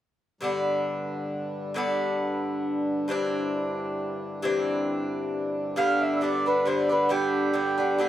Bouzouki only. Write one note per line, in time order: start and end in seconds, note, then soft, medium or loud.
0.41 1.73 G2 medium
0.41 1.75 D3 medium
0.41 1.75 B3 medium
0.41 1.77 D4 medium
1.74 3.07 G2 medium
1.74 3.08 D3 medium
1.74 3.10 B3 medium
1.74 3.11 D4 medium
3.08 4.41 G2 medium
3.08 4.42 E3 medium
3.08 4.43 C4 medium
3.08 4.45 D4 medium
4.42 5.75 G2 medium
4.42 5.77 E3 medium
4.42 5.77 C4 medium
4.42 5.77 D4 medium
5.76 6.20 G2 medium
5.76 6.21 D3 medium
5.76 6.22 B3 medium
5.76 6.23 D4 medium
6.21 6.45 G2 soft
6.21 6.46 D3 soft
6.21 6.46 B3 soft
6.21 6.45 D4 medium
6.46 6.65 D3 soft
6.46 6.66 B3 soft
6.46 6.66 D4 soft
6.66 6.90 G2 medium
6.66 6.90 D3 medium
6.66 6.89 B3 medium
6.66 6.88 D4 soft
6.89 7.09 D3 soft
6.89 7.09 B3 soft
6.89 7.10 D4 soft
7.09 7.52 G2 medium
7.09 7.53 D3 medium
7.09 7.53 B3 medium
7.09 7.55 D4 medium
7.53 7.78 G2 soft
7.53 7.78 D3 soft
7.53 7.77 B3 soft
7.53 7.76 D4 medium
7.78 7.98 D3 soft
7.78 7.99 B3 soft
7.78 7.99 D4 soft
7.99 8.09 G2 medium
7.99 8.09 D3 medium
7.99 8.09 B3 soft
7.99 8.09 D4 medium